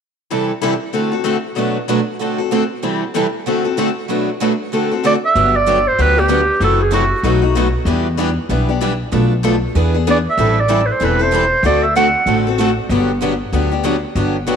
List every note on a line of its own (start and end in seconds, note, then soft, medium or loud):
0.30 0.51 C3 medium
0.30 0.51 E3 medium
0.30 0.51 G3 medium
0.30 0.51 C4 medium
0.30 0.51 E4 medium
0.30 0.51 A4 medium
0.61 0.73 C3 medium
0.61 0.73 E3 medium
0.61 0.73 G3 medium
0.61 0.73 C4 medium
0.61 0.73 E4 medium
0.61 0.73 A4 medium
0.93 1.11 D3 medium
0.93 1.12 A3 medium
0.93 1.12 C4 medium
0.93 1.12 F#4 medium
0.93 1.10 A4 medium
1.12 1.23 C4 soft
1.12 1.23 F#4 soft
1.12 1.24 A4 medium
1.24 1.36 D3 medium
1.24 1.36 A3 medium
1.24 1.36 C4 medium
1.24 1.36 F#4 medium
1.24 1.36 A4 medium
1.55 1.76 B2 medium
1.55 1.76 F#3 medium
1.55 1.76 A3 medium
1.55 1.77 D4 medium
1.55 1.77 F#4 medium
1.55 1.78 B4 medium
1.88 1.99 B2 medium
1.88 1.99 F#3 medium
1.88 1.99 A3 medium
1.88 2.00 D4 medium
1.88 1.99 F#4 medium
1.88 2.00 B4 medium
2.21 2.39 D3 medium
2.21 2.39 A3 medium
2.21 2.39 C4 medium
2.21 2.38 F#4 medium
2.21 2.37 A4 medium
2.38 2.51 C4 soft
2.38 2.51 F#4 soft
2.38 2.51 A4 soft
2.52 2.63 D3 medium
2.52 2.63 A3 medium
2.52 2.63 C4 medium
2.52 2.63 F#4 medium
2.52 2.63 A4 medium
2.83 3.03 C3 medium
2.83 3.03 E3 medium
2.83 3.03 G3 medium
2.83 3.03 C4 medium
2.83 3.03 E4 medium
2.83 3.03 A4 medium
3.14 3.25 C3 medium
3.14 3.25 E3 medium
3.14 3.25 G3 medium
3.14 3.26 C4 medium
3.14 3.26 E4 medium
3.14 3.25 A4 medium
3.47 3.64 D3 medium
3.47 3.65 A3 medium
3.47 3.65 C4 medium
3.47 3.64 F#4 medium
3.47 3.63 A4 medium
3.64 3.77 C4 soft
3.64 3.77 F#4 medium
3.64 3.77 A4 medium
3.78 3.88 D3 medium
3.78 3.88 A3 medium
3.78 3.89 C4 medium
3.78 3.89 F#4 medium
3.78 3.89 A4 medium
4.09 4.29 B2 medium
4.09 4.29 F#3 medium
4.09 4.29 A3 medium
4.09 4.29 D4 medium
4.09 4.30 F#4 medium
4.09 4.29 B4 medium
4.41 4.52 B2 medium
4.41 4.52 F#3 medium
4.41 4.52 A3 medium
4.41 4.52 D4 medium
4.41 4.52 F#4 medium
4.41 4.52 B4 medium
4.73 4.90 D3 medium
4.73 4.91 A3 medium
4.73 4.91 C4 medium
4.73 4.91 F#4 medium
4.73 4.90 A4 medium
4.91 5.04 C4 soft
4.91 5.04 F#4 soft
4.91 5.04 A4 medium
5.04 5.15 D3 medium
5.04 5.15 A3 medium
5.04 5.15 C4 medium
5.04 5.15 F#4 medium
5.04 5.15 A4 medium
5.04 5.14 D5 medium
5.25 5.57 E5 medium
5.35 5.86 G1 medium
5.35 5.55 D3 medium
5.35 5.55 F#3 medium
5.35 5.55 B3 medium
5.35 5.55 D4 medium
5.35 5.55 G4 medium
5.56 5.89 D5 medium
5.67 5.78 D3 medium
5.67 5.78 F#3 medium
5.67 5.78 B3 medium
5.67 5.78 D4 medium
5.67 5.78 G4 medium
5.87 6.03 C5 medium
5.99 6.49 D2 medium
5.99 6.16 D3 medium
5.99 6.16 F#3 medium
5.99 6.16 B3 medium
5.99 6.16 D4 medium
5.99 6.15 G4 medium
5.99 6.21 B4 medium
6.16 6.28 B3 soft
6.16 6.28 D4 soft
6.16 6.28 G4 soft
6.16 6.62 G4 medium
6.28 6.40 D3 medium
6.28 6.40 F#3 medium
6.28 6.40 B3 medium
6.28 6.40 D4 medium
6.28 6.40 G4 medium
6.60 7.11 F#1 medium
6.60 6.81 C3 medium
6.60 6.81 E3 medium
6.60 6.80 F#3 medium
6.60 6.81 A3 medium
6.60 6.81 C4 medium
6.60 6.81 E4 medium
6.60 6.81 F#4 medium
6.60 6.81 A4 medium
6.60 6.80 A4 medium
6.82 6.93 G#4 medium
6.91 7.03 C3 medium
6.91 7.03 E3 medium
6.91 7.02 F#3 medium
6.91 7.04 A3 medium
6.91 7.03 C4 medium
6.91 7.03 E4 medium
6.91 7.04 F#4 medium
6.91 7.40 F#4 medium
6.91 7.03 A4 medium
7.23 7.74 B1 medium
7.23 7.42 B2 medium
7.23 7.42 F#3 medium
7.23 7.42 A3 medium
7.23 7.42 D#4 medium
7.23 7.41 F#4 medium
7.23 7.44 B4 medium
7.42 7.54 A3 soft
7.42 7.55 D#4 soft
7.42 7.54 F#4 medium
7.55 7.66 B2 medium
7.55 7.66 F#3 medium
7.55 7.66 A3 medium
7.55 7.66 D#4 medium
7.55 7.67 F#4 medium
7.55 7.67 B4 medium
7.85 8.36 E2 medium
7.85 8.06 E3 medium
7.85 8.06 G3 medium
7.85 8.06 B3 medium
7.85 8.07 D4 medium
7.85 8.06 E4 medium
7.85 8.07 G4 medium
7.85 8.07 B4 medium
8.17 8.28 E3 medium
8.17 8.29 G3 medium
8.17 8.29 B3 medium
8.17 8.29 D4 medium
8.17 8.30 E4 medium
8.17 8.29 G4 medium
8.17 8.30 B4 medium
8.49 9.00 B1 medium
8.49 8.68 E3 medium
8.49 8.69 G3 medium
8.49 8.68 B3 medium
8.49 8.68 D4 medium
8.49 8.70 E4 medium
8.49 8.67 G4 medium
8.49 8.70 B4 medium
8.69 8.79 B3 soft
8.69 8.80 D4 medium
8.69 8.80 G4 medium
8.81 8.92 E3 medium
8.81 8.92 G3 medium
8.81 8.91 B3 medium
8.81 8.92 D4 medium
8.81 8.92 E4 medium
8.81 8.92 G4 medium
8.81 8.92 B4 medium
9.12 9.63 B1 medium
9.12 9.32 B2 medium
9.12 9.32 F3 medium
9.12 9.32 A3 medium
9.12 9.32 D4 medium
9.12 9.33 A4 medium
9.12 9.33 B4 medium
9.43 9.54 B2 medium
9.43 9.54 F3 medium
9.43 9.54 A3 medium
9.43 9.55 D4 medium
9.43 9.55 A4 medium
9.43 9.55 B4 medium
9.75 10.25 E2 medium
9.75 9.94 E3 medium
9.75 9.94 B3 medium
9.75 9.94 D4 medium
9.75 9.93 G#4 medium
9.75 9.96 B4 medium
9.94 10.06 B3 soft
9.94 10.06 D4 soft
9.94 10.07 G#4 medium
10.07 10.18 E3 medium
10.07 10.18 B3 medium
10.07 10.18 D4 medium
10.07 10.18 G#4 medium
10.07 10.18 B4 medium
10.07 10.18 D5 medium
10.30 10.62 E5 medium
10.37 10.88 A1 medium
10.37 10.58 E3 medium
10.37 10.58 G3 medium
10.37 10.58 C4 medium
10.37 10.58 E4 medium
10.37 10.59 A4 medium
10.60 10.88 D5 medium
10.69 10.80 E3 medium
10.69 10.80 G3 medium
10.69 10.80 C4 medium
10.69 10.80 E4 medium
10.69 10.80 A4 medium
10.86 10.93 B4 soft
10.92 11.06 C5 medium
11.01 11.51 E1 medium
11.01 11.19 E3 medium
11.01 11.19 G3 medium
11.01 11.20 C4 medium
11.01 11.19 E4 medium
11.01 11.18 A4 medium
11.01 11.24 B4 medium
11.19 11.33 C4 soft
11.19 11.33 E4 soft
11.19 11.32 A4 medium
11.19 11.65 C5 medium
11.33 11.44 E3 medium
11.33 11.44 G3 medium
11.33 11.44 C4 medium
11.33 11.44 E4 medium
11.33 11.44 A4 medium
11.63 12.14 D2 medium
11.63 11.84 D3 medium
11.63 11.84 A3 medium
11.63 11.84 C4 medium
11.63 11.85 F#4 medium
11.63 11.85 A4 medium
11.63 11.85 D5 medium
11.83 11.95 E5 medium
11.96 12.07 D3 medium
11.96 12.07 A3 medium
11.96 12.07 C4 medium
11.96 12.07 F#4 medium
11.96 12.07 A4 medium
11.96 12.42 F#5 medium
12.26 12.77 A1 medium
12.26 12.45 D3 medium
12.26 12.45 A3 medium
12.26 12.45 C4 medium
12.26 12.45 F#4 medium
12.26 12.46 A4 medium
12.47 12.59 C4 soft
12.47 12.59 F#4 soft
12.47 12.59 A4 medium
12.60 12.70 D3 medium
12.60 12.70 A3 medium
12.60 12.70 C4 medium
12.60 12.70 F#4 medium
12.60 12.70 A4 medium
12.89 13.40 G1 medium
12.89 13.10 D3 medium
12.89 13.10 F#3 medium
12.89 13.10 B3 medium
12.89 13.11 D4 medium
12.89 13.11 G4 medium
13.22 13.32 D3 medium
13.22 13.33 F#3 medium
13.22 13.33 B3 medium
13.22 13.33 D4 medium
13.22 13.33 G4 medium
13.52 14.03 D2 medium
13.52 13.71 D3 medium
13.52 13.71 F#3 medium
13.52 13.71 B3 medium
13.52 13.71 D4 medium
13.52 13.70 G4 medium
13.71 13.83 B3 soft
13.71 13.84 D4 soft
13.71 13.84 G4 medium
13.84 13.95 D3 medium
13.84 13.95 F#3 medium
13.84 13.95 B3 medium
13.84 13.95 D4 medium
13.84 13.96 G4 medium
14.15 14.56 G1 medium
14.15 14.35 D3 medium
14.15 14.35 F#3 medium
14.15 14.35 B3 medium
14.15 14.36 D4 medium
14.15 14.36 G4 medium
14.47 14.56 D3 medium
14.47 14.56 F#3 medium
14.47 14.56 B3 medium
14.47 14.56 D4 medium
14.47 14.56 G4 medium